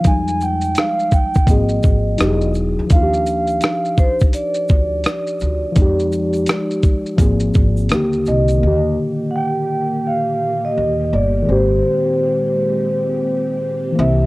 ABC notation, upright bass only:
X:1
M:4/4
L:1/16
Q:"Swing 16ths" 1/4=84
K:Eb
V:1 name="Upright bass" clef=bass
F,,4 z4 A,,,2 A,,,2 =E,,,3 D,, | E,,4 z6 D,,2 z2 D,, z | F,,4 z4 A,,,2 A,,,2 E,,2 C,,2 | E,,2 z8 z2 E,,2 G,,,2 |
A,,,2 z12 C,,2 |]